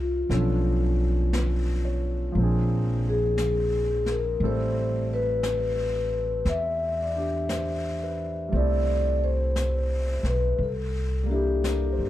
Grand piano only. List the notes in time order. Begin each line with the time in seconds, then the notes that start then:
Already playing: G3 A3 C4 A4 E5
0.30 F3 B3 C#4 D4 A4
1.35 B4
1.85 C#5
2.32 F3 A#3
2.38 C4 D4
2.43 G#4
4.43 G3 A3 C4 E4 A4
7.01 D5
7.16 D4 G4
7.51 C5
8.04 B4
8.48 G3 A3
8.54 C4 E4
8.60 A4
11.23 G3 A#3
11.29 D4 E4
11.34 G4
11.65 A#4
11.93 C5